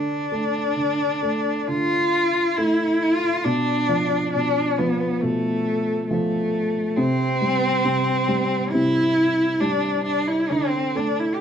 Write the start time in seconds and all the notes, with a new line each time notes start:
Already playing: D3 D4
0.32 A3
0.76 D3
1.22 A3
1.67 D3 F4
2.57 A3 E4
3.02 F4
3.44 B2 D4
3.89 F3
4.33 B2 D4
4.78 F3 B3
5.22 B2 A3
6.08 F3 A3
6.97 C3 C4
7.41 G3
7.84 C3
8.28 G3
8.71 C3 E4
9.60 G3 D4
10.05 D4
10.27 E4
10.50 D3 C4
10.95 A3 D4
11.20 E4
11.34 G4